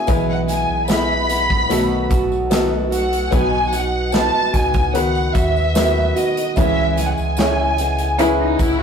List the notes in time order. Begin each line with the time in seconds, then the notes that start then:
Already playing: F#4 G#5
0.07 B1 B2 E3 G#3 B3 E4 G#4 B4, kick, closed hi-hat, tambourine
0.30 F#5
0.47 G#3 B3 E4 G#5, closed hi-hat, tambourine
0.69 B1
0.88 B3 E4 G#4 B4 B5, snare, closed hi-hat, tambourine
1.29 G#3 B3 E4, closed hi-hat, tambourine
1.50 kick
1.69 B1 B2 D#3 F#3 A3 B3 D#4 F#4 A4, closed hi-hat, tambourine
2.09 B1 A3 B3 F#4, kick, closed hi-hat, tambourine
2.32 tambourine
2.50 D#3 A3 B3 D#4 F#4 A4, snare, closed hi-hat, tambourine
2.91 A3 B3 F#4 F#5, closed hi-hat, tambourine
3.13 closed hi-hat
3.31 B1 B2 F#3 B3 D#4 F#4 B4 G#5, kick, closed hi-hat, tambourine
3.72 B3 D#4 F#4 F#5, closed hi-hat, tambourine
4.12 B3 D#4 F#4 B4 A5, snare, closed hi-hat, tambourine
4.53 C#2 B3 D#4 F#4 G#5, kick, closed hi-hat, tambourine
4.74 kick, closed hi-hat, tambourine
4.94 D#3 B3 F#4 B4 F#5, closed hi-hat, tambourine
5.15 tambourine
5.34 D#2 B3 F#4 E5, kick, closed hi-hat, tambourine
5.56 tambourine
5.74 D#3 F#3 B3 F#4 B4, snare, closed hi-hat, tambourine
6.15 B3 D#4 F#4 D#5, closed hi-hat, tambourine
6.37 closed hi-hat
6.56 C#2 C#3 E3 G#3 B3 C#4 E4 G#4 B4 E5, kick, closed hi-hat, tambourine
6.96 G#3 B3 E4 G#5, closed hi-hat, tambourine
7.06 F#5
7.14 G#5, tambourine
7.18 C#2
7.37 C#4 E4 G#4 C#5, snare, closed hi-hat, tambourine
7.78 G#3 B3 E4, closed hi-hat, tambourine
7.98 closed hi-hat, tambourine
8.19 C#4 E4 G#4 B4, closed hi-hat, tambourine
8.39 D#4
8.58 C#2 G#3 B3 E4, kick, closed hi-hat, tambourine
8.79 F#4